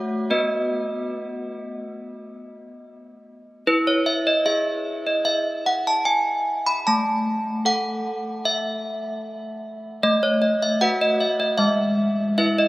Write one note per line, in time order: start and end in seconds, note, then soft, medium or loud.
0.00 0.29 A3 medium
0.00 0.29 F#4 medium
0.00 0.29 C#5 medium
0.00 0.28 F#5 medium
0.30 3.63 B3 medium
0.30 3.62 F#4 soft
0.30 3.63 B4 soft
0.30 2.80 D#5 medium
3.67 6.83 E4 medium
3.67 3.87 B4 medium
3.87 4.07 C#5 medium
4.06 4.27 E5 medium
4.27 4.47 D#5 medium
4.46 6.86 G#4 soft
4.46 5.04 E5 medium
5.07 5.27 D#5 medium
5.25 5.64 E5 medium
5.66 5.87 F#5 loud
5.87 6.07 A5 medium
6.05 6.64 G#5 medium
6.66 6.87 B5 loud
6.87 10.00 A3 medium
6.87 7.63 A5 medium
7.65 10.03 A4 soft
7.65 8.43 F#5 loud
8.45 9.59 E5 medium
10.03 11.55 A3 medium
10.03 10.23 D#5 loud
10.23 10.42 C#5 loud
10.42 10.61 D#5 loud
10.62 10.81 E5 loud
10.81 11.55 F#4 medium
10.81 11.55 B4 medium
10.81 11.00 F#5 loud
11.01 11.20 D#5 loud
11.20 11.40 E5 loud
11.40 11.59 D#5 medium
11.58 12.68 G#3 medium
11.58 12.34 E5 loud
12.38 12.68 E4 soft
12.38 12.68 B4 medium
12.38 12.58 E5 loud
12.58 12.68 D#5 loud